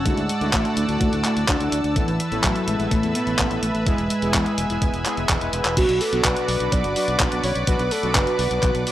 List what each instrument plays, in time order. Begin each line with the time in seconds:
Already playing: analog synth pad F#5 A5 E6
0.05 fingered electric bass D2, analog polysynth D3 A3 D4 E4 F#4, soft synth lead G#3, analog synth pad D5, kick, closed hi-hat
0.17 fingered electric bass D2, closed hi-hat
0.29 closed hi-hat
0.41 fingered electric bass D2, analog polysynth D3 A3 D4 E4 F#4, closed hi-hat
0.53 fingered electric bass A1, soft synth lead A3, kick, clap, closed hi-hat
0.65 closed hi-hat
0.77 fingered electric bass D2, closed hi-hat
0.89 fingered electric bass D2, analog polysynth D3 A3 D4 E4 F#4, closed hi-hat
1.01 fingered electric bass D2, soft synth lead A3, kick, closed hi-hat
1.13 fingered electric bass D2, closed hi-hat
1.24 analog polysynth D3 A3 D4 E4 F#4, clap, closed hi-hat
1.37 fingered electric bass D2, closed hi-hat
1.48 fingered electric bass D2, soft synth lead D4, kick, clap, closed hi-hat
1.60 fingered electric bass D2, analog polysynth D3 A3 D4 E4 F#4, closed hi-hat
1.72 fingered electric bass D2, closed hi-hat
1.84 fingered electric bass D2, closed hi-hat
1.96 fingered electric bass A1, analog polysynth A2 A3 B3 E4 A4, soft synth lead E3, analog synth pad B4 E5, kick, closed hi-hat
2.08 fingered electric bass A1, closed hi-hat
2.20 closed hi-hat
2.32 fingered electric bass A1, analog polysynth A2 A3 B3 E4 A4, closed hi-hat
2.44 fingered electric bass A1, soft synth lead F#3, kick, clap, closed hi-hat
2.56 closed hi-hat
2.68 fingered electric bass A1, soft synth lead G#3, closed hi-hat
2.79 fingered electric bass A1, analog polysynth A2 A3 B3 E4 A4, closed hi-hat
2.91 fingered electric bass A1, soft synth lead A3, kick, closed hi-hat
3.03 fingered electric bass E2, closed hi-hat
3.15 analog polysynth A2 A3 B3 E4 A4, soft synth lead B3, closed hi-hat
3.27 fingered electric bass A1, closed hi-hat
3.39 fingered electric bass A1, kick, clap, closed hi-hat
3.51 fingered electric bass A1, analog polysynth A2 A3 B3 E4 A4, closed hi-hat
3.63 fingered electric bass A1, soft synth lead A3, closed hi-hat
3.75 fingered electric bass A1, closed hi-hat
3.86 fingered electric bass E1, analog polysynth G#3 B3 E4 G#4, soft synth lead G#3, analog synth pad G#5, kick, closed hi-hat
3.98 fingered electric bass E1, closed hi-hat
4.10 closed hi-hat
4.22 fingered electric bass E1, analog polysynth G#3 B3 E4 G#4, closed hi-hat
4.34 fingered electric bass E2, kick, clap, closed hi-hat
4.46 closed hi-hat
4.58 fingered electric bass E1, closed hi-hat
4.70 fingered electric bass E1, analog polysynth G#3 B3 E4 G#4, closed hi-hat
4.82 fingered electric bass E1, kick, closed hi-hat
4.94 fingered electric bass E1, closed hi-hat
5.06 analog polysynth G#3 B3 E4 G#4, clap, closed hi-hat
5.17 fingered electric bass E1, closed hi-hat
5.29 fingered electric bass E1, kick, clap, closed hi-hat
5.41 fingered electric bass E1, analog polysynth G#3 B3 E4 B4, closed hi-hat
5.53 fingered electric bass E1, closed hi-hat
5.65 fingered electric bass E1, clap, closed hi-hat
5.77 fingered electric bass B1, analog polysynth B2 F#3 B3 D4 F#4, soft synth lead F#4, analog synth pad B4 D5 F#5 D6, kick, closed hi-hat, crash
5.89 fingered electric bass B1, closed hi-hat
6.01 soft synth lead A4, open hi-hat
6.13 fingered electric bass B1, analog polysynth B2 F#3 B3 D4 F#4, closed hi-hat
6.24 fingered electric bass B1, soft synth lead B4, kick, clap, closed hi-hat
6.36 closed hi-hat
6.48 fingered electric bass B1, open hi-hat
6.60 fingered electric bass B1, analog polysynth B2 F#3 B3 D4 F#4, closed hi-hat
6.72 fingered electric bass B1, soft synth lead D5, kick, closed hi-hat
6.84 fingered electric bass F#1, closed hi-hat
6.96 analog polysynth B2 F#3 B3 D4 F#4, open hi-hat
7.08 fingered electric bass B1, closed hi-hat
7.20 fingered electric bass B1, kick, clap, closed hi-hat
7.32 fingered electric bass B1, analog polysynth B2 F#3 B3 D4 F#4, closed hi-hat
7.44 fingered electric bass B1, soft synth lead C#5, open hi-hat
7.55 fingered electric bass B1, closed hi-hat
7.67 fingered electric bass B1, analog polysynth B2 F#3 B3 D4 F#4, soft synth lead B4, kick, closed hi-hat
7.79 fingered electric bass B1, closed hi-hat
7.91 soft synth lead A4, open hi-hat
8.03 fingered electric bass B1, analog polysynth B2 F#3 B3 D4 F#4, closed hi-hat
8.15 fingered electric bass F#1, soft synth lead B4, kick, clap, closed hi-hat
8.27 closed hi-hat
8.39 fingered electric bass B1, open hi-hat
8.51 fingered electric bass B1, analog polysynth B2 F#3 B3 D4 F#4, closed hi-hat
8.63 fingered electric bass B1, kick, clap, closed hi-hat
8.75 fingered electric bass B1, closed hi-hat
8.87 analog polysynth B2 F#3 B3 D4 F#4, open hi-hat